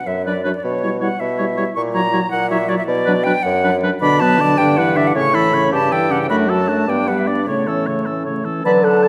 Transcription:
0.07 0.54 F#2 medium
0.07 0.25 E5 medium
0.26 0.33 F#3 medium
0.26 0.34 D4 soft
0.26 0.33 B4 soft
0.26 0.44 D5 medium
0.44 0.52 F#3 medium
0.44 0.52 D4 medium
0.44 0.51 B4 medium
0.44 0.49 C#5 medium
0.55 0.65 D5 medium
0.63 1.11 B2 medium
0.63 1.00 C#5 medium
0.82 0.90 G3 medium
0.82 0.90 E4 medium
0.82 0.89 C#5 medium
1.01 1.08 G3 medium
1.01 1.08 E4 medium
1.01 1.08 C#5 medium
1.01 1.21 F#5 medium
1.20 1.67 B2 medium
1.20 1.75 E5 medium
1.38 1.46 G3 medium
1.38 1.47 E4 soft
1.38 1.45 C#5 medium
1.58 1.64 G3 medium
1.58 1.65 E4 medium
1.58 1.64 C#5 medium
1.75 2.23 A#2 medium
1.75 1.81 C#6 medium
1.94 2.01 F#3 medium
1.94 2.02 E4 medium
1.94 2.01 C#5 medium
1.94 2.30 A#5 medium
2.13 2.20 F#3 medium
2.13 2.20 E4 medium
2.13 2.20 C#5 medium
2.31 2.80 A#2 medium
2.31 2.50 F#5 loud
2.50 2.57 F#3 medium
2.50 2.58 E4 medium
2.50 2.58 C#5 medium
2.50 2.70 E5 loud
2.69 2.76 F#3 medium
2.69 2.77 E4 medium
2.69 2.76 C#5 medium
2.69 2.77 D5 loud
2.78 2.86 E5 medium
2.86 3.36 B2 medium
2.86 3.25 D5 loud
3.06 3.14 F#3 medium
3.06 3.15 D4 medium
3.06 3.13 B4 medium
3.24 3.33 F#3 medium
3.24 3.33 D4 medium
3.24 3.33 B4 medium
3.24 3.44 G5 loud
3.43 3.92 F#2 medium
3.43 3.75 F#5 loud
3.64 3.71 F#3 medium
3.64 3.71 D4 medium
3.64 3.71 B4 medium
3.83 3.90 F#3 medium
3.83 3.90 D4 medium
3.83 3.90 B4 medium
4.01 4.55 B2 medium
4.01 4.22 D3 medium
4.01 4.23 D4 medium
4.01 4.23 D5 medium
4.01 4.21 B5 loud
4.20 4.41 F#3 medium
4.20 4.41 B3 medium
4.20 4.43 B4 medium
4.20 4.59 A5 loud
4.39 4.58 D3 medium
4.39 4.58 D4 medium
4.39 4.58 D5 medium
4.58 5.14 G2 medium
4.58 4.79 D3 medium
4.58 4.80 D4 medium
4.58 4.80 D5 medium
4.58 4.79 G5 loud
4.77 4.98 E3 medium
4.77 4.99 E4 medium
4.77 4.99 B4 medium
4.77 4.98 F#5 loud
4.96 5.15 D3 medium
4.96 5.15 D4 medium
4.96 5.15 D5 medium
4.96 5.09 E5 loud
5.07 5.16 F#5 loud
5.15 5.74 A2 medium
5.15 5.37 C#3 medium
5.15 5.36 C#4 medium
5.15 5.36 C#5 medium
5.15 5.36 C#6 loud
5.34 5.55 E3 medium
5.34 5.55 E4 medium
5.34 5.56 A4 medium
5.34 5.73 B5 loud
5.53 5.71 C#3 medium
5.53 5.72 C#4 medium
5.53 5.72 C#5 medium
5.72 6.31 G2 medium
5.72 5.93 C#3 medium
5.72 5.93 C#4 medium
5.72 5.94 G4 medium
5.72 5.94 A5 loud
5.92 6.12 E3 medium
5.92 6.11 E4 medium
5.92 6.12 A4 medium
5.92 6.13 G5 loud
6.10 6.30 C#3 medium
6.10 6.29 C#4 medium
6.10 6.29 G4 medium
6.10 6.21 F#5 loud
6.22 6.26 G5 medium
6.29 6.88 F#2 medium
6.29 6.50 A3 medium
6.29 6.51 D4 medium
6.29 6.51 F#4 medium
6.29 6.36 B5 loud
6.48 6.70 F#3 medium
6.48 6.70 F#4 medium
6.48 6.70 A4 medium
6.48 6.91 A5 medium
6.69 6.88 A3 medium
6.69 6.88 D4 medium
6.69 6.87 F#4 medium
6.88 7.46 G2 medium
6.88 7.10 B3 medium
6.88 7.10 D4 medium
6.88 7.09 D5 soft
6.88 7.09 G5 medium
7.08 7.30 G3 soft
7.08 7.30 B3 soft
7.08 7.29 B4 soft
7.08 7.20 F#5 medium
7.18 7.29 E5 medium
7.27 7.47 B3 soft
7.27 7.47 D4 soft
7.27 7.47 D5 soft
7.27 7.48 D5 medium
7.47 8.44 A2 medium
7.47 7.69 C#3 medium
7.47 7.69 A3 medium
7.47 8.06 C#5 medium
7.47 7.69 C#5 medium
7.67 7.89 E3 soft
7.67 7.89 C#4 soft
7.67 7.88 A4 soft
7.87 8.08 C#3 soft
7.87 8.09 A3 soft
7.87 8.08 C#5 soft
8.06 8.25 E3 soft
8.06 8.26 C#4 soft
8.06 8.25 A4 soft
8.26 8.47 C#3 soft
8.26 8.48 A3 soft
8.26 8.47 C#5 soft
8.45 8.64 E3 soft
8.45 8.65 C#4 soft
8.45 8.65 A4 soft
8.65 9.08 D3 medium
8.65 9.08 F#3 medium
8.65 8.85 B4 medium
8.65 8.86 A5 medium
8.65 8.71 B5 medium
8.83 9.08 A4 medium
8.83 9.05 F#5 medium
8.83 9.08 A5 medium
9.03 9.08 A5 medium

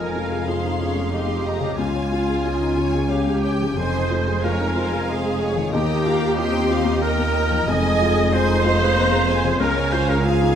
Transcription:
0.00 1.74 F1 soft
0.00 1.74 F2 soft
0.00 1.75 F2 medium
0.00 3.53 F3 soft
0.00 3.66 G#3 soft
0.00 1.74 D#4 soft
0.00 0.43 F4 medium
0.00 1.67 F4 soft
0.00 0.48 A#4 medium
0.00 0.49 A#4 medium
0.00 0.24 D#5 soft
0.00 1.75 F5 medium
0.00 0.44 G#5 soft
0.15 0.41 F4 soft
0.31 0.58 G#4 soft
0.46 0.80 C4 medium
0.46 0.74 F4 soft
0.46 1.13 G#4 medium
0.46 0.80 C5 medium
0.46 1.12 C6 soft
0.64 0.81 D#4 soft
0.80 1.13 C#4 medium
0.80 1.07 F4 soft
0.80 1.12 C#5 medium
0.95 1.22 G#3 soft
1.10 1.44 D#4 medium
1.10 1.78 G4 medium
1.10 1.77 G4 medium
1.10 1.38 D#5 soft
1.10 1.78 D#5 soft
1.10 1.45 C6 medium
1.27 1.55 G#3 soft
1.44 1.78 C4 medium
1.44 1.72 D#5 soft
1.44 1.78 A#5 medium
1.60 3.71 C#3 soft
1.60 1.78 G#4 soft
1.64 3.73 C#4 soft
1.69 3.68 F4 soft
1.77 3.73 C#2 medium
1.77 3.74 C#2 soft
1.77 3.74 C#2 medium
1.77 3.73 C#4 medium
1.77 3.11 F4 medium
1.77 3.10 F4 medium
1.77 2.09 F5 medium
1.77 3.77 G#5 medium
1.77 2.42 G#5 medium
1.95 2.21 C#5 soft
2.10 2.38 F4 soft
2.10 2.43 F5 medium
2.28 2.54 G#4 soft
2.44 2.71 F4 soft
2.44 2.77 D#5 medium
2.44 3.09 G#5 medium
2.61 2.77 D#4 soft
2.76 3.03 F4 soft
2.76 3.10 C#5 medium
2.94 3.21 G#3 soft
3.09 3.78 G4 medium
3.09 3.37 C#5 soft
3.09 3.44 F5 medium
3.26 3.54 G#3 soft
3.44 3.71 C#5 soft
3.44 3.77 G5 medium
3.60 7.49 F3 soft
3.60 3.78 G#4 soft
3.64 5.58 D#4 soft
3.69 5.62 F4 soft
3.73 5.68 F2 medium
3.73 4.09 C4 medium
3.73 5.73 G#4 soft
3.77 5.69 F1 medium
3.77 5.69 F2 medium
3.77 4.42 C5 medium
3.77 4.45 C5 medium
3.77 4.10 D#5 medium
3.77 4.10 G#5 medium
3.77 5.69 G#5 medium
3.94 4.20 D#5 soft
4.10 5.73 G#3 medium
4.10 4.36 F4 soft
4.10 4.43 D#5 medium
4.26 4.52 G#4 soft
4.42 4.69 F4 soft
4.42 5.08 A#4 medium
4.42 5.09 A#4 medium
4.42 4.75 C#5 medium
4.42 5.73 F5 medium
4.60 4.76 D#4 soft
4.75 5.01 F4 soft
4.75 5.06 C5 medium
4.91 5.18 G#3 soft
5.07 5.50 G#4 medium
5.07 5.73 G#4 medium
5.07 5.39 C5 medium
5.07 5.33 D#5 soft
5.23 5.50 G#3 soft
5.40 5.73 C#5 medium
5.40 5.66 D#5 soft
5.55 7.62 D#3 medium
5.55 5.73 G#4 soft
5.59 7.53 D#4 soft
5.63 7.58 F4 soft
5.68 7.69 A#4 soft
5.72 7.65 D#2 medium
5.72 6.36 A#3 medium
5.72 7.04 G4 medium
5.72 7.00 G4 medium
5.72 6.05 D#5 medium
5.72 6.36 G5 medium
5.72 6.36 A#5 medium
5.89 6.15 D#5 medium
6.05 6.31 F4 medium
6.05 6.38 F5 medium
6.22 6.48 A#4 soft
6.37 7.02 C4 medium
6.37 6.63 F4 medium
6.37 8.30 D#5 medium
6.37 6.70 G5 medium
6.37 7.02 C6 medium
6.53 6.69 D#4 soft
6.69 6.95 F4 soft
6.69 7.03 F5 medium
6.84 7.11 A#3 soft
7.01 7.51 A#3 medium
7.01 7.67 A#4 medium
7.01 7.69 A#4 medium
7.01 7.28 D#5 medium
7.01 7.67 G5 medium
7.01 7.68 A#5 medium
7.17 7.45 A#3 soft
7.34 7.62 D#5 medium
7.50 10.55 F3 medium
7.50 7.69 A#4 medium
7.54 9.56 D#4 medium
7.59 9.51 F4 medium
7.64 10.55 G#4 medium
7.64 8.35 D#5 medium
7.68 9.57 F1 medium
7.68 9.57 F2 medium
7.68 8.94 G#3 medium
7.68 8.32 D#5 loud
7.68 8.30 G#5 medium
7.68 8.33 G#5 medium
7.84 8.10 D#5 medium
8.01 8.27 F4 medium
8.17 8.43 G#4 medium
8.31 8.58 F4 medium
8.31 9.61 C5 loud
8.31 9.59 C5 medium
8.31 8.95 D#5 medium
8.31 8.64 G#5 medium
8.31 8.96 C6 medium
8.48 8.65 D#4 soft
8.64 8.90 F4 medium
8.64 9.58 F5 medium
8.81 9.06 G#3 soft
8.95 9.29 A#3 medium
8.95 9.60 C5 medium
8.95 9.22 D#5 medium
8.95 9.29 A#5 medium
9.11 9.38 G#3 medium
9.27 9.61 C4 medium
9.27 9.54 D#5 medium
9.27 9.59 G#5 medium
9.43 10.55 C#3 medium
9.43 9.60 G#4 medium
9.47 10.55 C#4 medium
9.52 10.55 F4 medium
9.56 10.55 C#2 medium
9.56 9.94 A#4 medium
9.56 10.55 C#5 medium
9.56 10.23 C#5 medium
9.56 10.23 F5 medium
9.56 10.23 G#5 medium
9.60 10.55 C#2 medium
9.60 10.24 C#4 medium
9.60 9.93 A#4 loud
9.76 10.02 C#5 medium
9.92 10.18 F4 medium
9.92 10.11 C5 medium
9.92 10.09 C5 medium
10.09 10.35 G#4 medium
10.09 10.26 A#4 medium
10.09 10.25 A#4 medium
10.24 10.55 F4 medium
10.24 10.51 F4 medium
10.24 10.55 G#4 medium
10.24 10.55 F5 medium
10.24 10.55 G#5 medium
10.41 10.55 D#4 soft

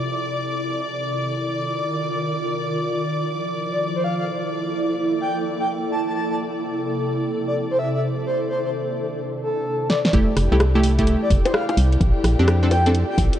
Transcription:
0.00 0.76 C3 medium
0.00 0.76 E4 medium
0.00 9.02 D5 medium
0.00 9.19 D5 medium
0.00 9.19 D6 medium
0.75 2.63 D#3 medium
1.21 2.63 F4 medium
2.63 4.51 F3 medium
3.16 8.26 E4 medium
3.25 9.02 A4 medium
3.72 3.80 D5 medium
3.96 4.02 C5 medium
4.04 4.14 F5 medium
4.19 4.24 F5 medium
4.51 7.02 A#3 medium
5.21 5.35 G5 medium
5.60 5.67 G5 medium
5.92 6.01 A5 medium
6.07 6.12 A5 medium
6.15 8.26 C3 medium
6.15 6.25 A5 medium
6.30 6.35 A5 medium
7.47 7.55 D5 medium
7.71 7.77 C5 medium
7.79 7.89 E5 medium
7.94 7.99 E5 medium
8.26 8.40 C5 medium
8.49 8.59 C5 medium
8.64 8.70 C5 medium
9.43 9.88 A4 medium
9.90 10.00 D5 medium
9.90 snare medium
10.05 10.10 D5 medium
10.05 snare medium
10.13 10.25 F1 loud
10.13 10.46 A3 loud
10.13 12.01 E4 medium
10.13 10.46 E4 medium
10.13 13.39 G4 medium
10.13 10.46 G4 loud
10.13 13.39 G5 medium
10.13 kick loud
10.13 closed hi-hat medium
10.37 10.49 F1 medium
10.37 cross-stick medium
10.37 open hi-hat loud
10.52 11.17 C2 medium
10.52 10.57 A3 medium
10.52 10.57 E4 medium
10.52 10.57 G4 loud
10.60 cross-stick loud
10.60 closed hi-hat medium
10.75 10.95 A3 medium
10.75 10.95 E4 medium
10.75 10.95 G4 loud
10.83 open hi-hat loud
10.99 12.00 A3 medium
10.99 12.00 E4 medium
10.99 12.00 G4 loud
10.99 13.39 D5 medium
10.99 kick medium
10.99 closed hi-hat medium
11.07 closed hi-hat medium
11.22 11.30 D5 medium
11.30 11.42 F1 medium
11.30 kick loud
11.30 open hi-hat loud
11.45 11.52 C5 medium
11.45 closed hi-hat medium
11.45 high bongo medium
11.54 11.64 F5 medium
11.54 cross-stick loud
11.69 11.74 F5 medium
11.69 closed hi-hat medium
11.69 high bongo medium
11.77 11.97 C2 medium
11.77 open hi-hat loud
11.92 closed hi-hat soft
12.01 12.12 A#1 loud
12.01 13.39 F4 medium
12.01 kick loud
12.01 closed hi-hat medium
12.24 12.36 A#1 medium
12.24 cross-stick medium
12.24 open hi-hat loud
12.39 13.04 F2 medium
12.39 12.59 C4 medium
12.39 12.59 D4 medium
12.39 12.59 G4 medium
12.48 cross-stick loud
12.48 closed hi-hat medium
12.63 12.68 C4 medium
12.63 12.68 D4 medium
12.63 12.68 A4 medium
12.71 12.85 G5 loud
12.71 open hi-hat loud
12.71 high bongo medium
12.75 13.39 A#4 loud
12.86 12.91 C4 medium
12.86 12.91 D4 medium
12.86 12.91 A4 medium
12.86 closed hi-hat medium
12.95 closed hi-hat medium
13.10 13.17 G5 medium
13.18 13.30 A#1 medium
13.18 kick loud
13.18 open hi-hat loud
13.33 closed hi-hat medium

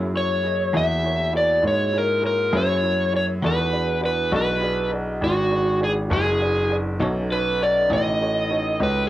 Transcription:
0.00 0.70 F#2 medium
0.00 3.39 A#3 medium
0.00 3.39 E4 medium
0.00 3.39 F#4 medium
0.00 3.39 G#4 medium
0.13 0.36 E4 medium
0.13 0.36 G#4 soft
0.13 0.36 A#4 soft
0.13 0.37 C#5 medium
0.17 0.77 C#5 medium
0.43 0.66 E4 medium
0.43 0.66 G#4 medium
0.43 0.66 A#4 soft
0.43 0.67 D#5 medium
0.73 1.60 E2 medium
0.73 0.92 F#3 medium
0.73 0.92 A#3 medium
0.73 0.95 E4 medium
0.73 0.92 E4 medium
0.73 0.96 G#4 soft
0.73 0.92 G#4 medium
0.73 0.96 A#4 soft
0.73 0.97 E5 medium
0.77 1.37 E5 loud
1.04 1.26 E4 medium
1.04 1.26 G#4 medium
1.04 1.26 A#4 medium
1.04 1.27 C#5 medium
1.33 1.55 E4 medium
1.33 1.56 G#4 medium
1.33 1.56 A#4 soft
1.33 1.56 C#5 medium
1.37 1.66 D5 medium
1.61 2.50 G#2 medium
1.61 1.85 E4 medium
1.61 1.85 G#4 soft
1.61 1.85 A#4 soft
1.61 1.86 C#5 medium
1.68 1.96 C#5 medium
1.92 2.15 E4 medium
1.92 2.15 G#4 soft
1.92 2.15 A#4 soft
1.92 2.16 C#5 medium
1.98 2.25 A#4 medium
2.21 2.44 E4 medium
2.21 2.45 G#4 medium
2.21 2.45 A#4 medium
2.21 2.46 C#5 medium
2.27 2.55 A#4 medium
2.51 3.40 F#2 loud
2.51 2.72 F#3 soft
2.51 2.71 A#3 medium
2.51 2.75 E4 medium
2.51 2.71 E4 medium
2.51 2.75 G#4 medium
2.51 2.71 G#4 medium
2.51 2.75 A#4 medium
2.51 2.76 C#5 medium
2.57 3.15 C#5 loud
2.82 3.05 E4 medium
2.82 3.05 G#4 soft
2.82 3.06 A#4 soft
2.82 3.06 C#5 medium
3.12 3.35 E4 medium
3.12 3.35 G#4 soft
3.12 3.36 A#4 soft
3.12 3.36 C#5 medium
3.16 3.24 C#5 medium
3.41 4.29 E2 medium
3.41 3.60 E3 medium
3.41 3.61 G#3 medium
3.41 3.61 D4 medium
3.41 3.73 D#4 medium
3.41 3.73 F4 medium
3.41 3.64 F#4 medium
3.41 3.61 F#4 medium
3.41 3.73 G4 medium
3.41 3.65 G#4 medium
3.41 3.73 A4 medium
3.41 3.65 B4 medium
3.41 3.66 D5 medium
3.46 4.00 B4 medium
3.71 6.98 D4 medium
3.71 6.98 E4 medium
3.71 3.94 F#4 medium
3.71 6.98 F#4 medium
3.71 3.95 G#4 soft
3.71 6.98 G#4 medium
3.71 3.95 B4 soft
3.71 3.95 D5 medium
4.01 4.24 F#4 medium
4.01 4.24 G#4 medium
4.01 4.24 B4 soft
4.01 4.25 D5 medium
4.05 4.32 B4 medium
4.31 5.19 B1 medium
4.31 4.51 E3 medium
4.31 4.51 G#3 medium
4.31 4.50 D4 medium
4.31 4.54 F#4 medium
4.31 4.50 F#4 medium
4.31 4.54 G#4 medium
4.31 4.55 B4 soft
4.31 4.55 D5 medium
4.36 4.90 B4 medium
4.61 4.84 F#4 medium
4.61 4.84 G#4 medium
4.61 4.84 B4 medium
4.61 4.85 D5 medium
4.90 5.13 F#4 medium
4.90 5.14 G#4 soft
4.90 5.14 B4 medium
4.90 5.15 D5 medium
5.21 6.08 G#1 medium
5.21 5.43 F#4 medium
5.21 5.84 F#4 medium
5.21 5.44 G#4 medium
5.21 5.44 B4 medium
5.21 5.44 D5 medium
5.50 5.73 F#4 medium
5.50 5.73 G#4 soft
5.50 5.74 B4 medium
5.50 5.74 D5 medium
5.79 6.03 F#4 medium
5.79 6.03 G#4 soft
5.79 6.04 B4 soft
5.79 6.04 D5 medium
5.84 5.92 G#4 loud
6.09 6.98 F#1 medium
6.09 6.30 E3 medium
6.09 6.30 G#3 medium
6.09 6.29 D4 medium
6.09 6.33 F#4 medium
6.09 6.29 F#4 medium
6.09 6.33 G#4 medium
6.09 6.75 G#4 loud
6.09 6.33 B4 medium
6.09 6.34 D5 medium
6.39 6.63 F#4 medium
6.39 6.63 G#4 medium
6.39 6.64 B4 soft
6.39 6.64 D5 medium
6.70 6.93 F#4 medium
6.70 6.93 G#4 medium
6.70 6.93 B4 medium
6.70 6.94 D5 medium
7.00 7.87 B1 medium
7.00 7.19 B2 medium
7.00 7.19 D#3 medium
7.00 7.19 A3 medium
7.00 9.09 C#4 medium
7.00 7.19 C#4 medium
7.00 7.23 D#4 medium
7.00 9.09 D#4 medium
7.00 7.23 F#4 medium
7.00 9.09 A4 medium
7.00 7.24 A4 medium
7.00 9.09 B4 medium
7.00 7.24 C#5 medium
7.30 7.53 D#4 medium
7.30 7.53 F#4 soft
7.30 7.53 A4 soft
7.30 7.62 B4 medium
7.30 7.54 C#5 medium
7.60 7.83 D#4 medium
7.60 7.83 F#4 soft
7.60 7.83 A4 medium
7.60 7.84 C#5 medium
7.60 7.92 D5 medium
7.89 8.77 A1 medium
7.89 8.09 B2 medium
7.89 8.09 D#3 medium
7.89 8.08 A3 medium
7.89 8.08 C#4 medium
7.89 8.12 D#4 medium
7.89 8.12 F#4 soft
7.89 8.13 A4 medium
7.89 8.13 C#5 medium
7.93 8.83 D#5 loud
8.20 8.43 D#4 medium
8.20 8.43 F#4 medium
8.20 8.43 A4 medium
8.20 8.44 C#5 medium
8.49 8.72 D#4 medium
8.49 8.72 F#4 medium
8.49 8.73 A4 soft
8.49 8.73 C#5 medium
8.79 9.09 C#2 medium
8.79 9.02 D#4 medium
8.79 9.02 F#4 soft
8.79 9.02 A4 soft
8.79 9.03 C#5 medium
8.83 9.05 B4 medium

